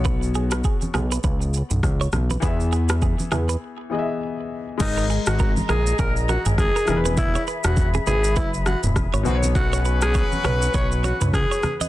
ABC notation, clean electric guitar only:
X:1
M:4/4
L:1/16
Q:"Swing 16ths" 1/4=101
K:B
V:1 name="Clean electric guitar"
B z G B G z G B B2 z3 c z B | B z G B G z G B z8 | z A G z A z A z G z A G z A z B | z c B z2 G B z B2 z3 c B z |
z c B z c z c z B z c B z c z d |]